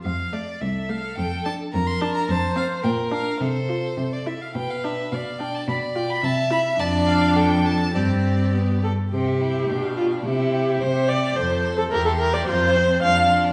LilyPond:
<<
  \new Staff \with { instrumentName = "Violin" } { \time 2/4 \key f \major \tempo 4 = 107 f''8 d''8 e''8 f''8 | g''8 a''8 bes''16 c'''16 a''16 bes''16 | a''8 f''8 g''8 f''8 | c''4~ c''16 d''16 e''16 f''16 |
\key c \major g''16 f''16 e''8 f''8 g''16 a''16 | b''8 g''16 b''16 a''8 b''8 | a''8 f''8 g''8 a''8 | d''4. r8 |
g''16 e''16 g''16 e''16 g''16 f''16 g''16 f''16 | g''16 e''16 g''16 e''16 g''16 e''16 g''16 e''16 | c'''16 a''16 c'''16 a''16 bes''16 c'''16 bes''16 c'''16 | c'''16 a''16 c'''16 a''16 c'''16 a''16 c'''16 a''16 | }
  \new Staff \with { instrumentName = "Violin" } { \time 2/4 \key f \major r4 a'4~ | a'4 bes'4 | c''4 bes'4 | a'4. r8 |
\key c \major b'4 d''4 | d''4 e''4 | d''4 a'4 | g'4. r8 |
c'8 e'8 d'4 | e'4 g'4 | a'4 g'4 | f'8 c'8 d'4 | }
  \new Staff \with { instrumentName = "Viola" } { \time 2/4 \key f \major r8 a8 r8 a8 | r8 d'8 r8 d'8 | r8 c'8 r8 d'8 | r8 f'8 r8 e'8 |
\key c \major r8 d'8 r8 d'8 | r8 f'8 r8 e'8 | d'2 | c'4 b8 a'8 |
g'4. f'8 | g'4 c''8 d''8 | c''8. a'16 bes'16 a'16 bes'16 d''16 | c''4 f''8 r8 | }
  \new Staff \with { instrumentName = "Cello" } { \clef bass \time 2/4 \key f \major f,4 c,4 | f,4 f,4 | f,4 bes,4 | c4 c4 |
\key c \major b,4 b,4 | b,4 c4 | f,2 | g,4. r8 |
c4 b,4 | c4 c4 | f,4 e,4 | f,4 f,4 | }
>>